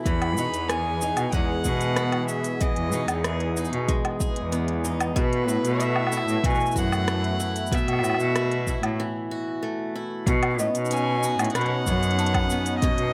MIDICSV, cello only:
0, 0, Header, 1, 2, 480
1, 0, Start_track
1, 0, Tempo, 638298
1, 44, Time_signature, 4, 2, 24, 8
1, 9874, End_track
2, 0, Start_track
2, 0, Title_t, "Cello"
2, 0, Program_c, 0, 42
2, 43, Note_on_c, 0, 40, 88
2, 277, Note_on_c, 0, 47, 85
2, 289, Note_off_c, 0, 40, 0
2, 380, Note_off_c, 0, 47, 0
2, 395, Note_on_c, 0, 40, 79
2, 847, Note_off_c, 0, 40, 0
2, 875, Note_on_c, 0, 47, 75
2, 979, Note_off_c, 0, 47, 0
2, 1000, Note_on_c, 0, 40, 90
2, 1102, Note_off_c, 0, 40, 0
2, 1243, Note_on_c, 0, 47, 97
2, 1810, Note_off_c, 0, 47, 0
2, 2081, Note_on_c, 0, 40, 77
2, 2204, Note_on_c, 0, 47, 88
2, 2215, Note_off_c, 0, 40, 0
2, 2303, Note_off_c, 0, 47, 0
2, 2324, Note_on_c, 0, 40, 87
2, 2771, Note_off_c, 0, 40, 0
2, 2802, Note_on_c, 0, 47, 76
2, 2902, Note_off_c, 0, 47, 0
2, 3284, Note_on_c, 0, 40, 77
2, 3851, Note_off_c, 0, 40, 0
2, 3882, Note_on_c, 0, 47, 88
2, 4117, Note_on_c, 0, 45, 86
2, 4128, Note_off_c, 0, 47, 0
2, 4220, Note_off_c, 0, 45, 0
2, 4240, Note_on_c, 0, 47, 92
2, 4689, Note_off_c, 0, 47, 0
2, 4723, Note_on_c, 0, 45, 87
2, 4823, Note_off_c, 0, 45, 0
2, 4844, Note_on_c, 0, 47, 98
2, 4943, Note_off_c, 0, 47, 0
2, 5082, Note_on_c, 0, 42, 94
2, 5650, Note_off_c, 0, 42, 0
2, 5919, Note_on_c, 0, 47, 78
2, 6042, Note_on_c, 0, 45, 90
2, 6053, Note_off_c, 0, 47, 0
2, 6142, Note_off_c, 0, 45, 0
2, 6159, Note_on_c, 0, 47, 82
2, 6609, Note_off_c, 0, 47, 0
2, 6636, Note_on_c, 0, 45, 82
2, 6739, Note_off_c, 0, 45, 0
2, 7721, Note_on_c, 0, 47, 102
2, 7964, Note_on_c, 0, 45, 92
2, 7975, Note_off_c, 0, 47, 0
2, 8063, Note_off_c, 0, 45, 0
2, 8081, Note_on_c, 0, 47, 89
2, 8530, Note_off_c, 0, 47, 0
2, 8563, Note_on_c, 0, 45, 83
2, 8663, Note_off_c, 0, 45, 0
2, 8683, Note_on_c, 0, 47, 97
2, 8783, Note_off_c, 0, 47, 0
2, 8924, Note_on_c, 0, 42, 106
2, 9491, Note_off_c, 0, 42, 0
2, 9767, Note_on_c, 0, 47, 79
2, 9874, Note_off_c, 0, 47, 0
2, 9874, End_track
0, 0, End_of_file